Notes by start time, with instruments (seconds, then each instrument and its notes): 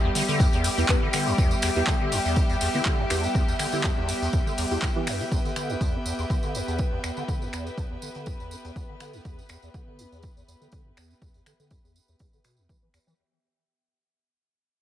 Already playing: string section G3 G4, analog synth pad B3 G4 E5 G5
0.04 acid bass E2
0.15 acid bass D3, open hi-hat, tambourine
0.28 acid bass D3, tambourine
0.40 acid bass E2, kick, tambourine
0.53 acid bass E2, tambourine
0.64 acid bass G2, open hi-hat, tambourine
0.78 acid bass E2, synth stab B3 E4 G4, tambourine
0.89 acid bass E2, synth stab B3 E4 B4, kick, clap, tambourine
1.02 acid bass D3
1.13 acid bass D3, finger snap, open hi-hat, tambourine
1.27 acid bass E2, tambourine
1.38 acid bass E2, kick, tambourine
1.51 acid bass G2, tambourine
1.62 acid bass E2, finger snap, open hi-hat, tambourine
1.76 acid bass E2, synth stab B3 E4 G4, tambourine
1.87 acid bass D3, kick, clap, tambourine
2.01 acid bass D3
2.12 acid bass E2, open hi-hat, tambourine
2.25 acid bass E2, tambourine
2.36 acid bass G2, kick, tambourine
2.49 acid bass E2, tambourine
2.61 acid bass E2, open hi-hat, tambourine
2.74 acid bass D3, synth stab B3 E4 G4, tambourine
2.85 acid bass D3, kick, clap, tambourine
2.99 acid bass E2
3.10 acid bass E2, synth stab B3 E4 G4, finger snap, open hi-hat, tambourine
3.24 acid bass G2, tambourine
3.35 acid bass E2, kick, tambourine
3.48 acid bass E2, tambourine
3.59 acid bass D3, finger snap, open hi-hat, tambourine
3.72 acid bass D3, synth stab B3 E4 G4, tambourine
3.84 acid bass E2, kick, clap, tambourine
3.97 acid bass E2
4.09 acid bass G2, open hi-hat, tambourine
4.22 acid bass E2, tambourine
4.33 acid bass E2, kick, tambourine
4.46 acid bass D3, tambourine
4.58 acid bass E2, open hi-hat, tambourine
4.71 acid bass E2, synth stab B3 E4 G4, tambourine
4.82 acid bass G2, kick, clap, tambourine
4.96 acid bass E3, synth stab B3 E4 G4
5.07 acid bass F#2, finger snap, open hi-hat, tambourine
5.20 acid bass E3, tambourine
5.32 acid bass E2, string section B3 B4, kick, tambourine
5.45 acid bass D3, tambourine
5.56 acid bass D3, finger snap, tambourine
5.69 acid bass E2, tambourine
5.81 acid bass E2, kick, tambourine
5.94 acid bass G2
6.05 acid bass E2, tambourine
6.19 acid bass E2, tambourine
6.30 acid bass D3, kick, tambourine
6.43 acid bass D3, tambourine
6.55 acid bass E2, tambourine
6.68 acid bass E2, tambourine
6.78 acid bass G2, kick, tambourine
6.92 acid bass E2
7.04 acid bass E2, finger snap, tambourine
7.17 acid bass D3, tambourine
7.28 acid bass D3, kick, tambourine
7.42 acid bass E2, tambourine
7.53 acid bass E2, finger snap, tambourine
7.66 acid bass G2, tambourine
7.78 acid bass E2, kick, tambourine
7.91 acid bass E2
8.02 acid bass D3, tambourine
8.15 acid bass D3, tambourine
8.26 acid bass E2, kick, tambourine
8.40 acid bass E2, tambourine
8.51 acid bass G2, tambourine
8.64 acid bass E2, tambourine
8.76 acid bass E2, kick, tambourine
8.89 acid bass D3
9.00 acid bass D3, finger snap, tambourine
9.13 acid bass E2, tambourine
9.25 acid bass E2, kick, tambourine
9.38 acid bass G2, tambourine
9.49 acid bass E2, finger snap, tambourine
9.62 acid bass E2, tambourine
9.74 acid bass D3, kick, tambourine
9.87 acid bass D3
9.99 acid bass E2, tambourine
10.12 acid bass E2, tambourine
10.22 acid bass G2, kick, tambourine
10.37 acid bass E2, tambourine
10.48 acid bass E2, tambourine
10.61 acid bass D3, tambourine
10.72 acid bass D3, kick, tambourine
10.86 acid bass E2
10.97 acid bass E2, finger snap, tambourine
11.10 acid bass G2, tambourine
11.22 acid bass E2, kick, tambourine
11.34 acid bass E2, tambourine
11.46 acid bass D3, finger snap, tambourine
11.59 acid bass D3, tambourine
11.71 acid bass E2, kick, tambourine
11.84 acid bass E2, tambourine
11.96 acid bass G2, tambourine
12.08 acid bass E2, tambourine
12.19 acid bass E2, kick, tambourine
12.33 acid bass D3, tambourine
12.44 acid bass B2, finger snap, tambourine
12.57 acid bass E2, tambourine
12.69 acid bass E3, kick, tambourine
12.82 acid bass E3
12.94 acid bass E2, finger snap, tambourine
13.07 acid bass E3, tambourine